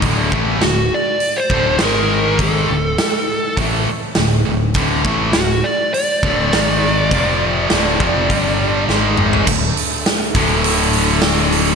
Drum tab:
CC |----------------|----------------|----------------|----------------|
HH |o---o---o---o---|o---o---o---o---|o---o---o---o---|o---o---o-------|
SD |----o-------o---|----o-------o---|----o-------o---|----o-------o---|
T2 |----------------|----------------|----------------|--------------o-|
FT |----------------|----------------|----------------|---------------o|
BD |o-o-------o-----|o-------o-------|o-o-------o-----|o-----o-o-------|

CC |x---------------|
HH |--o-o-o-o-o-o-o-|
SD |----o-------o---|
T2 |----------------|
FT |----------------|
BD |o-----o---------|